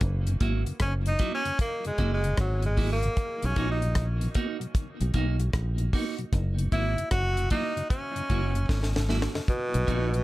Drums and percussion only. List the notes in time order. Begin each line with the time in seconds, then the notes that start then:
0.01 kick, closed hi-hat
0.27 closed hi-hat
0.41 kick, closed hi-hat
0.66 closed hi-hat
0.80 kick, cross-stick, closed hi-hat
1.06 closed hi-hat
1.19 kick, closed hi-hat
1.45 closed hi-hat
1.59 kick, closed hi-hat
1.85 closed hi-hat
1.98 kick, closed hi-hat
2.24 closed hi-hat
2.37 kick, cross-stick, closed hi-hat
2.62 closed hi-hat
2.77 kick, open hi-hat
3.03 closed hi-hat
3.17 kick, closed hi-hat
3.42 closed hi-hat
3.56 kick, closed hi-hat
3.82 closed hi-hat
3.95 kick, cross-stick, closed hi-hat
4.21 closed hi-hat
4.35 kick, closed hi-hat
4.61 closed hi-hat
4.75 kick, closed hi-hat
5.01 closed hi-hat
5.14 kick, closed hi-hat
5.40 closed hi-hat
5.53 kick, cross-stick, closed hi-hat
5.78 closed hi-hat
5.93 kick, open hi-hat
6.18 closed hi-hat
6.33 kick, closed hi-hat
6.59 closed hi-hat
6.72 kick, closed hi-hat
6.98 closed hi-hat
7.11 kick, cross-stick, closed hi-hat
7.37 closed hi-hat
7.50 kick, closed hi-hat
7.77 closed hi-hat
7.90 kick, closed hi-hat
8.16 closed hi-hat
8.30 kick, closed hi-hat
8.55 closed hi-hat
8.69 kick, snare
8.83 snare
8.96 snare
9.09 snare
9.22 snare
9.35 snare
9.48 kick, closed hi-hat
9.74 closed hi-hat
9.88 kick, closed hi-hat
10.14 closed hi-hat